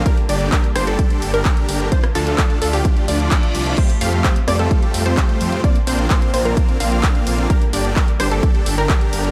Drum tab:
CC |----------------|----------------|x---------------|----------------|
HH |xxoxxxoxxxoxxxox|xxoxxxooxxoxxxox|xxoxxxoxxxoxxxox|xxoxxxoxxxoxxxox|
CP |----x-------x---|----x-------x---|----x-------x---|----x-------x---|
SD |------r---------|-r--------------|------r---------|----------------|
BD |o---o---o---o---|o---o---o---o---|o---o---o---o---|o---o---o---o---|

CC |----------------|
HH |xxoxxxoxxxo-xxox|
CP |----x-------x---|
SD |------r---------|
BD |o---o---o---o---|